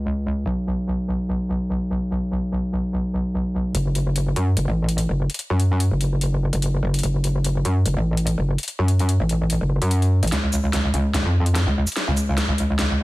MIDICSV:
0, 0, Header, 1, 3, 480
1, 0, Start_track
1, 0, Key_signature, 3, "minor"
1, 0, Tempo, 410959
1, 536, Time_signature, 4, 2, 24, 8
1, 15219, End_track
2, 0, Start_track
2, 0, Title_t, "Wobble bass"
2, 0, Program_c, 0, 39
2, 0, Note_on_c, 0, 37, 85
2, 514, Note_off_c, 0, 37, 0
2, 536, Note_on_c, 0, 35, 89
2, 4354, Note_off_c, 0, 35, 0
2, 4376, Note_on_c, 0, 30, 98
2, 5078, Note_off_c, 0, 30, 0
2, 5096, Note_on_c, 0, 42, 94
2, 5318, Note_off_c, 0, 42, 0
2, 5336, Note_on_c, 0, 30, 96
2, 5446, Note_off_c, 0, 30, 0
2, 5466, Note_on_c, 0, 33, 91
2, 5926, Note_off_c, 0, 33, 0
2, 5946, Note_on_c, 0, 30, 95
2, 6166, Note_off_c, 0, 30, 0
2, 6426, Note_on_c, 0, 42, 97
2, 6886, Note_off_c, 0, 42, 0
2, 6907, Note_on_c, 0, 30, 97
2, 7606, Note_off_c, 0, 30, 0
2, 7626, Note_on_c, 0, 30, 94
2, 7958, Note_off_c, 0, 30, 0
2, 7975, Note_on_c, 0, 30, 95
2, 8198, Note_off_c, 0, 30, 0
2, 8216, Note_on_c, 0, 30, 95
2, 8918, Note_off_c, 0, 30, 0
2, 8935, Note_on_c, 0, 42, 93
2, 9158, Note_off_c, 0, 42, 0
2, 9175, Note_on_c, 0, 30, 96
2, 9286, Note_off_c, 0, 30, 0
2, 9306, Note_on_c, 0, 33, 93
2, 9766, Note_off_c, 0, 33, 0
2, 9786, Note_on_c, 0, 30, 100
2, 10006, Note_off_c, 0, 30, 0
2, 10266, Note_on_c, 0, 42, 98
2, 10726, Note_off_c, 0, 42, 0
2, 10746, Note_on_c, 0, 33, 99
2, 11206, Note_off_c, 0, 33, 0
2, 11226, Note_on_c, 0, 30, 91
2, 11445, Note_off_c, 0, 30, 0
2, 11466, Note_on_c, 0, 42, 95
2, 11925, Note_off_c, 0, 42, 0
2, 11946, Note_on_c, 0, 33, 100
2, 12038, Note_off_c, 0, 33, 0
2, 12055, Note_on_c, 0, 37, 97
2, 12758, Note_off_c, 0, 37, 0
2, 12775, Note_on_c, 0, 37, 94
2, 12998, Note_off_c, 0, 37, 0
2, 13016, Note_on_c, 0, 37, 98
2, 13126, Note_off_c, 0, 37, 0
2, 13146, Note_on_c, 0, 41, 94
2, 13606, Note_off_c, 0, 41, 0
2, 13626, Note_on_c, 0, 37, 99
2, 13846, Note_off_c, 0, 37, 0
2, 14107, Note_on_c, 0, 37, 97
2, 14566, Note_off_c, 0, 37, 0
2, 14587, Note_on_c, 0, 37, 95
2, 15219, Note_off_c, 0, 37, 0
2, 15219, End_track
3, 0, Start_track
3, 0, Title_t, "Drums"
3, 4376, Note_on_c, 9, 42, 80
3, 4493, Note_off_c, 9, 42, 0
3, 4616, Note_on_c, 9, 42, 54
3, 4733, Note_off_c, 9, 42, 0
3, 4856, Note_on_c, 9, 42, 82
3, 4972, Note_off_c, 9, 42, 0
3, 5096, Note_on_c, 9, 42, 53
3, 5212, Note_off_c, 9, 42, 0
3, 5336, Note_on_c, 9, 42, 81
3, 5453, Note_off_c, 9, 42, 0
3, 5707, Note_on_c, 9, 42, 53
3, 5816, Note_off_c, 9, 42, 0
3, 5816, Note_on_c, 9, 42, 81
3, 5933, Note_off_c, 9, 42, 0
3, 6187, Note_on_c, 9, 42, 49
3, 6241, Note_off_c, 9, 42, 0
3, 6241, Note_on_c, 9, 42, 63
3, 6296, Note_off_c, 9, 42, 0
3, 6296, Note_on_c, 9, 42, 81
3, 6413, Note_off_c, 9, 42, 0
3, 6536, Note_on_c, 9, 42, 54
3, 6653, Note_off_c, 9, 42, 0
3, 6776, Note_on_c, 9, 42, 82
3, 6893, Note_off_c, 9, 42, 0
3, 7016, Note_on_c, 9, 42, 56
3, 7133, Note_off_c, 9, 42, 0
3, 7256, Note_on_c, 9, 42, 81
3, 7373, Note_off_c, 9, 42, 0
3, 7627, Note_on_c, 9, 42, 53
3, 7736, Note_off_c, 9, 42, 0
3, 7736, Note_on_c, 9, 42, 82
3, 7852, Note_off_c, 9, 42, 0
3, 8107, Note_on_c, 9, 42, 48
3, 8161, Note_off_c, 9, 42, 0
3, 8161, Note_on_c, 9, 42, 66
3, 8215, Note_off_c, 9, 42, 0
3, 8215, Note_on_c, 9, 42, 82
3, 8332, Note_off_c, 9, 42, 0
3, 8456, Note_on_c, 9, 42, 53
3, 8572, Note_off_c, 9, 42, 0
3, 8695, Note_on_c, 9, 42, 80
3, 8812, Note_off_c, 9, 42, 0
3, 8935, Note_on_c, 9, 42, 54
3, 9052, Note_off_c, 9, 42, 0
3, 9176, Note_on_c, 9, 42, 79
3, 9293, Note_off_c, 9, 42, 0
3, 9547, Note_on_c, 9, 42, 54
3, 9656, Note_off_c, 9, 42, 0
3, 9656, Note_on_c, 9, 42, 82
3, 9772, Note_off_c, 9, 42, 0
3, 10026, Note_on_c, 9, 42, 49
3, 10081, Note_off_c, 9, 42, 0
3, 10081, Note_on_c, 9, 42, 64
3, 10135, Note_off_c, 9, 42, 0
3, 10135, Note_on_c, 9, 42, 77
3, 10252, Note_off_c, 9, 42, 0
3, 10375, Note_on_c, 9, 42, 52
3, 10492, Note_off_c, 9, 42, 0
3, 10506, Note_on_c, 9, 42, 37
3, 10615, Note_off_c, 9, 42, 0
3, 10615, Note_on_c, 9, 42, 77
3, 10731, Note_off_c, 9, 42, 0
3, 10855, Note_on_c, 9, 42, 53
3, 10972, Note_off_c, 9, 42, 0
3, 11095, Note_on_c, 9, 42, 78
3, 11211, Note_off_c, 9, 42, 0
3, 11466, Note_on_c, 9, 42, 52
3, 11575, Note_off_c, 9, 42, 0
3, 11575, Note_on_c, 9, 42, 78
3, 11692, Note_off_c, 9, 42, 0
3, 11706, Note_on_c, 9, 42, 36
3, 11823, Note_off_c, 9, 42, 0
3, 11946, Note_on_c, 9, 42, 47
3, 12001, Note_off_c, 9, 42, 0
3, 12001, Note_on_c, 9, 42, 61
3, 12055, Note_off_c, 9, 42, 0
3, 12055, Note_on_c, 9, 38, 49
3, 12055, Note_on_c, 9, 42, 76
3, 12172, Note_off_c, 9, 38, 0
3, 12172, Note_off_c, 9, 42, 0
3, 12296, Note_on_c, 9, 42, 51
3, 12296, Note_on_c, 9, 82, 54
3, 12412, Note_off_c, 9, 42, 0
3, 12412, Note_off_c, 9, 82, 0
3, 12535, Note_on_c, 9, 38, 51
3, 12535, Note_on_c, 9, 42, 76
3, 12652, Note_off_c, 9, 38, 0
3, 12652, Note_off_c, 9, 42, 0
3, 12776, Note_on_c, 9, 42, 51
3, 12892, Note_off_c, 9, 42, 0
3, 13016, Note_on_c, 9, 38, 54
3, 13016, Note_on_c, 9, 42, 76
3, 13133, Note_off_c, 9, 38, 0
3, 13133, Note_off_c, 9, 42, 0
3, 13387, Note_on_c, 9, 42, 51
3, 13496, Note_off_c, 9, 42, 0
3, 13496, Note_on_c, 9, 38, 55
3, 13496, Note_on_c, 9, 42, 76
3, 13612, Note_off_c, 9, 38, 0
3, 13612, Note_off_c, 9, 42, 0
3, 13867, Note_on_c, 9, 42, 46
3, 13867, Note_on_c, 9, 82, 80
3, 13921, Note_off_c, 9, 42, 0
3, 13921, Note_on_c, 9, 42, 61
3, 13976, Note_off_c, 9, 42, 0
3, 13976, Note_on_c, 9, 38, 60
3, 13976, Note_on_c, 9, 42, 77
3, 13984, Note_off_c, 9, 82, 0
3, 14092, Note_off_c, 9, 38, 0
3, 14092, Note_off_c, 9, 42, 0
3, 14216, Note_on_c, 9, 42, 52
3, 14216, Note_on_c, 9, 82, 55
3, 14333, Note_off_c, 9, 42, 0
3, 14333, Note_off_c, 9, 82, 0
3, 14456, Note_on_c, 9, 38, 63
3, 14456, Note_on_c, 9, 42, 77
3, 14573, Note_off_c, 9, 38, 0
3, 14573, Note_off_c, 9, 42, 0
3, 14696, Note_on_c, 9, 42, 52
3, 14813, Note_off_c, 9, 42, 0
3, 14936, Note_on_c, 9, 38, 67
3, 14936, Note_on_c, 9, 42, 75
3, 15052, Note_off_c, 9, 38, 0
3, 15052, Note_off_c, 9, 42, 0
3, 15219, End_track
0, 0, End_of_file